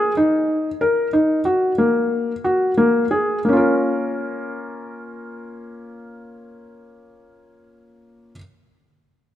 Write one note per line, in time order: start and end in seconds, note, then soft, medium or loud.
0.00 0.11 G#4 medium
0.17 0.68 D#4 medium
0.81 1.07 A#4 soft
1.13 1.39 D#4 medium
1.45 1.71 F#4 soft
1.78 2.31 A#3 soft
2.44 2.71 F#4 soft
2.77 3.04 A#3 medium
3.11 3.38 G#4 soft
3.45 8.29 A#3 soft
3.45 8.33 C#4 soft
3.53 8.35 F4 soft
3.57 8.37 A#4 soft